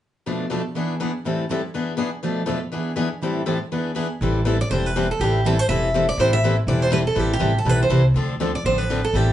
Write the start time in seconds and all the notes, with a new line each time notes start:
0.26 B2 F3 A3 D4 A4 B4
0.50 B2 F3 A3 D4 A4 B4
0.75 E3 B3 D4 G#4 B4
1.00 E3 B3 D4 G#4 B4
1.24 A2 E3 G3 C4 E4 A4
1.49 A2 E3 G3 C4 E4 A4
1.75 E3 B3 D4 G#4 B4
1.98 E3 B3 D4 G#4 B4
2.23 B2 F3 A3 D4 A4 B4
2.48 B2 F3 A3 D4 A4 B4
2.72 E3 B3 D4 G#4 B4
2.96 E3 B3 D4 G#4 B4
3.21 A2 E3 G3 C4 E4 A4
3.46 A2 E3 G3 C4 E4 A4
3.71 E3 B3 D4 G#4 B4
3.95 E3 B3 D4 G#4 B4
4.21 A1 E3 G3 C4 E4 A4
4.46 E3 G3 C4 E4 A4
4.61 D5
4.70 E1 E3 G3 C4 E4 A4 C5
4.86 B4
4.95 E3 G3 C4 E4 A4
5.11 A4
5.20 A1 E3 G3 C4 E4 G4 A4
5.44 E3 G3 C4 E4 A4
5.59 C5
5.69 E1 E3 G3 C4 E4 A4 E5
5.95 E3 G3 C4 E4 A4
6.09 D5
6.18 A1 E3 G3 C4 E4 A4 C5
6.33 E5
6.44 E3 G3 C4 E4 A4
6.67 E1 E3 G3 C4 E4 A4 D5
6.82 C5
6.92 E3 G3 C4 E4 A4 B4
7.07 A4
7.16 A1 E3 G3 C4 E4 G4 A4
7.33 G4
7.41 A1 E3 G3 C4 E4 A4
7.58 A4
7.65 B1 E3 G3 C4 E4 A4
7.69 B4
7.83 C5
7.90 C2 E3 G3 C4 E4 A4
8.14 D2 D3 F3 C4 D4 A4
8.40 D3 F3 C4 D4 A4
8.55 D5
8.64 A1 D3 F3 C4 D4 A4 C5
8.78 B4
8.89 D3 F3 C4 D4 A4
9.05 A4
9.13 A1 E3 G3 C4 E4 G4 A4